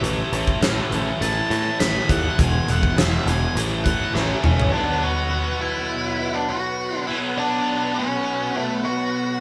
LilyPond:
<<
  \new Staff \with { instrumentName = "Tonewheel organ" } { \time 4/4 \key b \minor \tempo 4 = 102 r1 | r1 | <fis' b' fis'' b''>1~ | <fis' b' fis'' b''>1 | }
  \new Staff \with { instrumentName = "Lead electric guitar" } { \time 4/4 \key b \minor r2 a''8 a''8 b''8 fis''8 | gis''8 fis''8 e''8 gis''8 r8 fis''8 <cis' cis'' e''>8 <cis' cis''>8 | <d' d''>8 <fis' fis''>4 <e' e''>4~ <e' e''>16 <d' d''>16 <fis' fis''>4 | <e' e''>8 <d' d''>4 <cis' cis''>4 <a a'>8 <fis' fis''>4 | }
  \new Staff \with { instrumentName = "Overdriven electric guitar" } { \clef bass \time 4/4 \key b \minor <a, e a>8 <a, e a>8 <a, e a>8 <a, e a>8 <a, e a>8 <a, e a>8 <a, e a>8 <a, e a>8 | <e, b, e>8 <e, b, e>8 <e, b, e>8 <e, b, e>8 <a, e a>8 <a, e a>8 <a, e a>8 <a, e a>8 | <b, fis b>1 | <b, fis b>1 | }
  \new Staff \with { instrumentName = "Overdriven electric guitar" } { \clef bass \time 4/4 \key b \minor <a, e a>8 <a, e a>8 <a, e a>8 <a, e a>8 <a, e a>8 <a, e a>8 <a, e a>8 <a, e a>8 | <e, b, e>8 <e, b, e>8 <e, b, e>8 <e, b, e>8 <a, e a>8 <a, e a>8 <a, e a>8 <a, e a>8 | r1 | r1 | }
  \new Staff \with { instrumentName = "Picked electric bass" } { \clef bass \time 4/4 \key b \minor a,,8 a,,8 a,,8 a,,8 a,,8 a,8 a,,8 dis,8 | e,,8 e,,8 e,,8 e,,8 a,,4 a,,8 e,,8 | r1 | r1 | }
  \new DrumStaff \with { instrumentName = "Drums" } \drummode { \time 4/4 hh8 hh16 bd16 <hh sn>8 hh8 hh8 hh8 <hh sn>8 <hh bd>8 | <hh bd>8 hh16 bd16 <hh sn>8 hh8 hh8 <hh bd>8 sn8 toml16 tomfh16 | r4 r4 r4 r4 | r4 r4 r4 r4 | }
>>